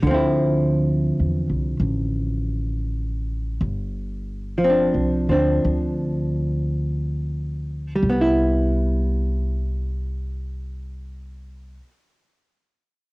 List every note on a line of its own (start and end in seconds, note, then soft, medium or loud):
0.03 1.15 D2 medium
0.03 3.59 D3 soft
0.07 3.61 F3 soft
0.07 3.63 C4 soft
0.14 3.65 E4 soft
1.20 1.46 E2 medium
1.50 1.76 C2 medium
1.80 3.57 A1 medium
3.61 4.89 G1 medium
4.58 5.28 F3 soft
4.64 5.30 C4 soft
4.69 5.31 D4 soft
4.94 5.26 C2 medium
5.29 5.62 D2 medium
5.29 7.95 F3 soft
5.29 8.04 C4 soft
5.29 8.04 D4 soft
5.65 7.99 D2 medium
7.96 11.77 G3 soft
8.03 11.80 C2 medium
8.09 11.90 B3 soft
8.21 12.02 E4 medium